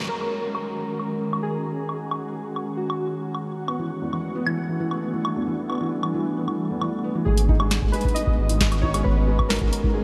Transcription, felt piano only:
3.68 B3
3.79 E3
4.02 E2
4.13 E3
4.35 B3
4.46 E3
4.69 E3
4.80 E3
5.02 B3
5.14 E3
5.36 E2
5.47 E3
5.70 B3
5.81 E3
6.03 E3
6.14 E3
6.37 B3
6.48 E3
6.70 E2
6.82 E3
7.04 B3
7.15 E3
7.26 G#3
7.49 D#4
7.60 G#3
7.82 G#3
7.94 G#3
8.16 D#4
8.27 G#3
8.49 G#2
8.61 G#3
8.83 D#4
8.94 G#3
9.17 G#3
9.28 G#3
9.50 D#4
9.61 G#3
9.84 G#2
9.95 G#3

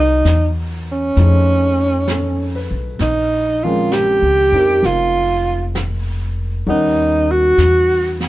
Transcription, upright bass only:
Already playing: C2
0.25 E2
1.17 F2
2.71 B1
3.00 A#1
4.22 C#2
4.52 F2
4.83 F1
6.67 D#2
7.58 E2

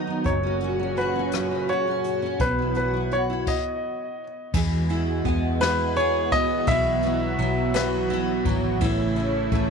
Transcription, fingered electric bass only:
Already playing: D#2
0.26 F#1
2.40 B1
4.54 E2
5.25 E2
6.32 A1
6.67 B1
7.38 B1
8.46 G#1
8.81 A1
9.52 A1

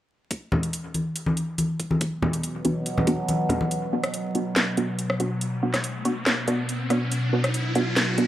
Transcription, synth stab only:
2.22 B3 D4 F#4
2.65 B3 D4 F#4
3.07 B3 D4 F#4
3.50 B3 D4 F#4
3.93 B3 D4 F#4
4.35 B3 D4 F#4
4.78 B3 D4 F#4
5.20 B3 D4 F#4
5.63 B3 D4 F#4
6.05 B3 D4 F#4
6.48 B3 D4 F#4
6.90 B3 D4 F#4
7.33 B3 D4 F#4
7.75 B3 D4 F#4
8.18 B3 D4 F#4

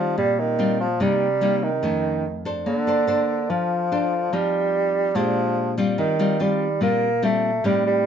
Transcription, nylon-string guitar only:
Already playing: D#3 G3 C4 F4
0.18 A#2
0.59 G3 C4 F4
1.00 C3 G3 A#3 D#4
1.41 G3 A#3 D#4
1.83 F2 D#3 A3 C#4
2.45 D4 A4 C5
2.66 A#3
2.87 D4 A4 C5
3.07 D4 A4 C5
3.50 F3
3.92 D4 A4 C5
4.33 F3 C4 D#4
5.15 A#2 G#3 D4 G4
5.78 G3 C4 F4
5.98 D#3
6.19 G3 C4 F4
6.40 G3 C4 F4
6.81 A#2 G3 C4 F4
7.22 G3 C4 F4
7.64 A2 G3 C4 D#4

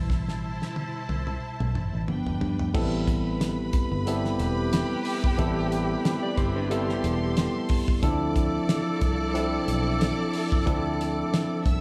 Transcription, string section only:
Already playing: E4 C5 A5
2.08 D4 B4 G5
2.75 B4 B5
6.70 A4 C6
8.02 D5 D6
11.66 E5 E6

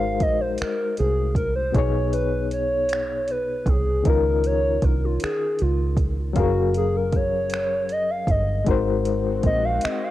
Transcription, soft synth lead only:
Already playing: F5
0.22 D#5
0.41 C5
0.61 A#4
0.99 G#4
1.36 A#4
1.56 C5
1.75 C#5
2.14 B4
2.53 C#5
3.31 B4
3.69 G#4
4.07 A#4
4.46 C#5
4.84 A#4
5.05 F4
5.23 G#4
5.61 F4
6.39 F#4
6.77 G#4
6.96 A#4
7.16 C#5
7.92 D#5
8.10 F5
8.31 D#5
9.46 D#5
9.65 F5
9.84 D#5
10.04 F5

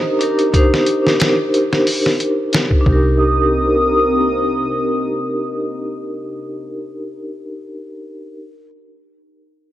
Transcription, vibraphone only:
Already playing: D4 D#4 G4 C5
0.19 D4 D#4 G4
0.23 A#4
0.52 D4 D#4 G4 C5
1.02 D4 D#4
1.07 G4 A#4
2.81 D4 D#4
2.89 G4
2.93 A#4

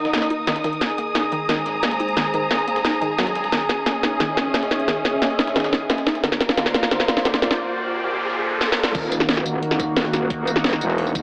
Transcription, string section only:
Already playing: D#4 A#4 D#6
0.81 G#4
1.15 A#5
3.52 C#4
6.24 A#4
6.46 F5
6.60 C6

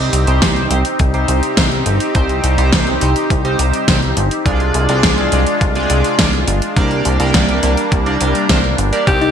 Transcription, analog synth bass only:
0.13 C2
0.27 C2
0.42 C2
0.71 C2
1.00 C2
1.29 C2
1.57 C2
1.86 G1
2.15 C2
2.44 C2
2.58 C2
2.73 C2
3.02 C2
3.30 C2
3.59 C2
3.88 C2
4.17 G1
4.46 C2
4.75 C2
4.89 C2
5.03 C2
5.32 C2
5.61 C2
5.90 C2
6.19 C2
6.48 G1
6.76 C2
7.06 C2
7.20 C2
7.34 C2
7.63 C2
7.92 C2
8.21 C2
8.49 C2
8.79 G1
9.07 C2

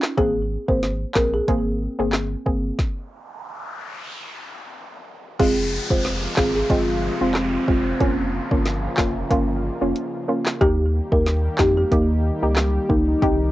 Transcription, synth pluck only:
Already playing: C#4 D#4 F4
0.17 A#3 C4 G#4
0.68 A#3 C4 G#4
1.15 A#3 C4 G#4
1.48 A#3 C4 G#4
1.99 A#3 C4 G#4
2.46 A#3 C4 G#4
5.39 G#3 C4 F4
5.90 G#3 C4 F4
6.37 G#3 C4 F4
6.70 G#3 C4 F4
7.21 G#3 C4 F4
7.67 G#3 C4 F4
8.00 A#3 C#4 F4
8.51 A#3 C#4 F4
8.98 A#3 C#4 F4
9.30 A#3 C#4 F4
9.81 A#3 C#4 F4
10.28 A#3 C#4 F4
10.61 A#3 D#4 G4
11.12 A#3 D#4 G4
11.59 A#3 D#4 G4
11.91 A#3 D#4 G4
12.42 A#3 D#4 G4
12.89 A#3 D#4 G4
13.22 C4 D#4 G4

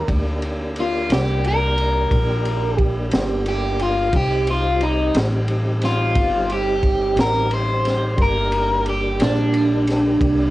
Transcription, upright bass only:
0.08 D2
1.10 C2
2.11 A#1
3.13 G1
4.13 C2
5.15 A1
6.16 G1
7.16 A1
8.18 G1
9.20 A#1
10.21 C2

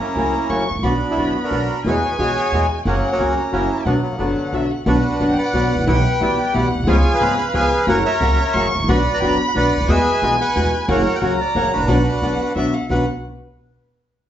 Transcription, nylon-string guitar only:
0.16 C#3 F#3 A#3 C#4 F#4
0.49 C#3 F#3 A#3 C#4 F#4
0.83 B2 F#3 B3 D4 F#4
1.17 B2 F#3 B3 D4 F#4
1.51 B2 F#3 B3 D4 F#4
1.85 B2 E3 G#3 B3 F#4
2.19 B2 E3 G#3 B3 F#4
2.52 B2 E3 G#3 B3 F#4
2.86 C#3 F#3 A#3 C#4 F#4
3.19 C#3 F#3 A#3 C#4 F#4
3.52 C#3 F#3 A#3 C#4 F#4
3.86 B2 F#3 B3 D4 F#4
4.19 B2 F#3 B3 D4 F#4
4.53 B2 F#3 B3 D4 F#4
4.86 B2 F#3 B3 D4 F#4
5.20 B2 F#3 B3 D4 F#4
5.53 B2 F#3 B3 D4 F#4
5.87 B2 E3 G3 B3 E4
6.20 B2 E3 G3 B3 E4
6.54 B2 E3 G3 B3 E4
6.87 C#3 F3 G#3 B3 G#4
7.20 C#3 F3 G#3 B3 G#4
7.53 C#3 F3 G#3 B3 G#4
7.87 C#3 F#3 A#3 C#4 F#4
8.21 C#3 F#3 A#3 C#4 F#4
8.54 C#3 F#3 A#3 C#4 F#4
8.88 B2 F#3 B3 D4 F#4
9.22 B2 F#3 B3 D4 F#4
9.55 B2 F#3 B3 D4 F#4
9.88 B2 E3 G#3 B3 F#4
10.22 B2 E3 G#3 B3 F#4
10.55 B2 E3 G#3 B3 F#4
10.88 C#3 F#3 A#3 C#4 F#4
11.21 C#3 F#3 A#3 C#4 F#4
11.55 C#3 F#3 A#3 C#4 F#4
11.88 B2 F#3 B3 D4 F#4
12.22 B2 F#3 B3 D4 F#4
12.56 B2 F#3 B3 D4 F#4
12.89 B2 F#3 B3 D4 F#4

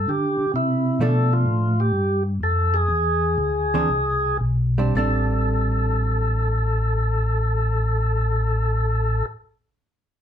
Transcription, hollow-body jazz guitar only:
1.00 F3 A3 D4
3.74 E3 C4 D4 G#4
4.78 G3 C4 D4
4.95 G3 C4 D4

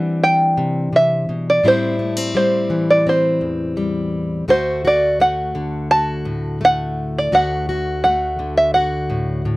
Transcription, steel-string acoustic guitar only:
Already playing: E3 G3 C4 D4
0.57 C3
0.93 C3
1.29 B2
1.63 A2 G3 C4 E4
1.99 A3
2.17 C4
2.35 G3
2.70 E3
3.07 C4
3.41 E2
3.77 G3
4.48 D2 A3 F#4
4.85 F#4
5.20 A3
5.55 D3
5.91 F#4
6.25 A2
6.61 A3
7.32 D2 A3 F#4
7.69 F#4
8.05 A3
8.39 D3
8.75 F#4
9.10 A2
9.45 A2

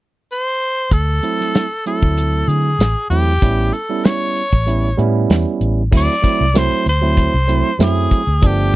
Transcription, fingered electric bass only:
0.91 D2
2.02 D2
2.48 D3
2.79 A1
3.10 E2
3.42 A1
4.53 A1
4.98 A2
5.30 E2
5.61 A1
5.92 D2
6.24 muted fingered electric bass stroke
6.41 C2
6.86 D2
7.34 C2
7.79 F#2
8.27 D2
8.43 G1

